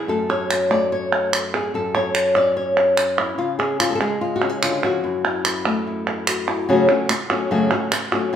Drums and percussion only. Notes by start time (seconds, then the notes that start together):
0.30 clap
0.51 clap
1.12 clap
1.33 clap
1.54 clap
1.95 clap
2.15 clap
2.35 clap
2.77 clap
2.97 clap
3.18 clap
3.60 clap
3.80 clap
4.42 clap
4.63 clap
4.83 clap
5.25 clap
5.45 clap
5.65 clap
6.07 clap
6.27 clap
6.48 clap
6.89 clap
7.09 clap
7.30 clap
7.71 clap
7.92 clap
8.12 clap